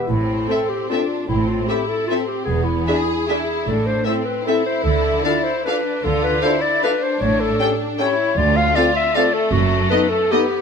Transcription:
0.08 A1 A2 C4 E4
0.48 C4 A4 E5
0.69 G4
0.89 C4 D4 F4 A4 E5
1.29 A1 A2 C4 E4
1.48 F4
1.67 C4 E4 G4 A4 E5
1.88 A4
2.07 C4 F4 A4 E5
2.27 G4
2.45 E1 E2 B3 G#4
2.64 E4
2.87 D4 G#4 E5
3.27 D4 E4 G#4 E5
3.66 A1 A2 D4 A4
3.87 C5
4.05 C4 E4 A4 E5
4.26 B4
4.46 C4 E4 A4 E5
4.66 C5
4.84 D2 D3 A4
5.24 D4 F4 A4 D5 F5
5.44 C5
5.65 D4 F4 A4 B4 F5
6.03 D2 D3 F4 A4
6.24 B4
6.42 D4 E4 F4 A4 C5 F5
6.62 D5
6.81 D4 F4 A4 B4 F5
7.03 C5
7.20 A1 A2 C#5
7.41 A4
7.59 C#4 G4 A4 G5
7.99 C#4 E4 G4 A4 C#5 G5
8.36 D2 F4 D5
8.57 F5
8.74 C4 F4 A4 D5 F5
8.96 E5
9.15 A3 C4 F4 A4 D5 F5
9.34 A4
9.52 F#1 F#2 F#4
9.90 B3 D#4 A4 B4 D#5
10.10 A4
10.31 B3 D#4 G4 A4 D#5

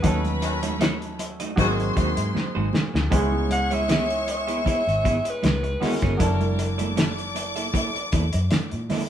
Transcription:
Already playing: B4
0.02 D#2 F#3 A3 C#4 D#4 F#4 B4 C#5 B5, kick, closed hi-hat, low conga
0.07 A4
0.24 closed hi-hat, high conga
0.42 D#3 C#4 F#4, muted clean electric guitar stroke, closed hi-hat
0.63 A3 D#4 F#4 C#5, closed hi-hat, high conga
0.80 A3 D#4 F#4 C#5, snare, closed hi-hat, muted conga
1.02 closed hi-hat
1.19 muted clean electric guitar stroke, closed hi-hat, muted conga
1.40 A3 D#4 F#4 D#5, closed hi-hat
1.56 G#1 D#3 F#3 G#3 A#3 C4 D#4 F#4 C5 D#5 C6, kick, closed hi-hat, muted conga
1.61 G#4
1.79 muted clean electric guitar stroke, closed hi-hat
1.96 D#2 G#3 D#4 F#4 C5, kick, closed hi-hat, muted conga
2.17 G#2, muted clean electric guitar stroke, closed hi-hat
2.35 muted clean electric guitar stroke, muted fingered electric bass stroke, snare, muted conga, high conga
2.55 G#1 G#3 D#4 F#4 C5
2.73 muted clean electric guitar stroke, snare, muted conga, high conga, low conga
2.94 D2, muted clean electric guitar stroke, snare, low conga
3.10 C#2 G#3 B3 C#4 D#4 E4 G#4 C#5 C#6, kick, closed hi-hat, low conga
3.14 G#4
3.20 E4
3.32 high conga
3.49 F#5, muted clean electric guitar stroke, closed hi-hat, muted conga
3.71 B3 E4 G#4 C#5 E5, closed hi-hat, high conga
3.88 B3 E4 G#4 E5, snare, closed hi-hat
4.10 closed hi-hat
4.27 E5, muted clean electric guitar stroke, closed hi-hat
4.47 B3 E4 G#4 E5, closed hi-hat
4.65 B3 E4 G#4 E5, muted fingered electric bass stroke, kick, closed hi-hat, muted conga
4.87 G#1, muted clean electric guitar stroke, closed hi-hat
5.04 B3 E4 G#4 C#5, kick, closed hi-hat, muted conga
5.24 muted clean electric guitar stroke, closed hi-hat
5.30 B4
5.43 C#2, muted clean electric guitar stroke, snare, closed hi-hat, muted conga, high conga
5.63 muted clean electric guitar stroke, closed hi-hat
5.80 G#3 B3 C#4 E4 F#4 G#4 C#5, snare, open hi-hat, muted conga, high conga, low conga
5.85 A#4
6.02 G1 B3 E4 G#4 C#5, kick, snare, closed hi-hat, low conga
6.17 F#1 F#3 A#3 D4 E4 A4 D5 D6, kick, closed hi-hat, muted conga, low conga
6.22 A5
6.40 closed hi-hat, high conga
6.58 muted clean electric guitar stroke, closed hi-hat
6.78 A#3 E4 A4 D5, closed hi-hat, high conga
6.96 A#3 E4 A4 D5, snare, closed hi-hat
7.19 closed hi-hat
7.35 muted clean electric guitar stroke, closed hi-hat, muted conga
7.56 A#3 E4 A4 E5, closed hi-hat
7.73 A#3 E4 A4 E5, kick, closed hi-hat, muted conga
7.95 muted clean electric guitar stroke, closed hi-hat
8.12 E2 A#3 E4 A4 D5, kick, closed hi-hat, muted conga
8.33 F#2, muted clean electric guitar stroke, closed hi-hat
8.51 muted clean electric guitar stroke, muted fingered electric bass stroke, snare, closed hi-hat, high conga
8.71 A#2, closed hi-hat
8.90 A#3 D4 E4 A4 D5, snare, open hi-hat, muted conga, high conga, low conga
9.00 E4 E5

